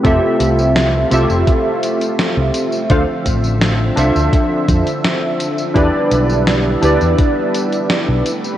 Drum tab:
HH |x-x-x-x-x-xxx-x-|x-x-x-x-x-xxx-x-|x-x-x-x-x-xxx-x-|
TB |x-xxx-xxx-xxx-xx|x-xxx-xxx-xxx-xx|x-xxx-xxx-xxx-xx|
SD |----o-------o---|----o-------o---|----o-------o---|
BD |o-------o-------|o-o-----o-o-----|o-------o-------|